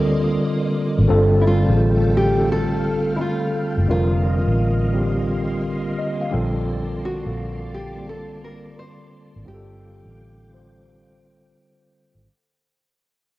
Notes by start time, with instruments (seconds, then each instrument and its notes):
Already playing: fingered electric bass D2, tine electric piano D3 G3 C4 F4 A4 A#4, string machine A#3 D5 D#5 C6, nylon-string guitar F4
0.98 fingered electric bass G#1
1.08 fingered electric bass G1, tine electric piano D3 G3 C4 F4 A4, string machine A3 F5 G5 A5
1.42 nylon-string guitar E4
1.47 nylon-string guitar F4
1.66 fingered electric bass A1, tine electric piano D3 G3 C4 F4 G#4
1.76 tine electric piano A4
2.17 nylon-string guitar G4
2.35 tine electric piano D3 G3 C4 F4 A4
2.52 nylon-string guitar A4
3.16 nylon-string guitar E4
3.21 nylon-string guitar F4
3.77 fingered electric bass F#1
3.88 fingered electric bass F1, tine electric piano D3 G3 C4 F4 A#4, string machine A#3 D#5 C6, nylon-string guitar F4
4.47 fingered electric bass A1
4.92 tine electric piano D3 G3 C4 F4 G4
5.99 tine electric piano D#5
6.21 tine electric piano F5
6.31 fingered electric bass A#1, tine electric piano D3 G3 C4 F4 A4 G5, string machine D5 A5
7.05 nylon-string guitar F#4
7.24 fingered electric bass A#1, tine electric piano D3 G3 C4 A4 F5
7.74 nylon-string guitar G4
7.95 tine electric piano D3 G3 A#3 C4 F4
8.09 nylon-string guitar A4
8.44 nylon-string guitar A#4
8.79 nylon-string guitar C5
9.36 fingered electric bass G#1
9.44 fingered electric bass G1, tine electric piano D3 G3 C4 F4 G4, nylon-string guitar G4, string machine F5 G5 D6
9.54 tine electric piano A4
10.05 fingered electric bass A1
10.51 tine electric piano D3 G3 C4 F4 C5
12.15 fingered electric bass G#1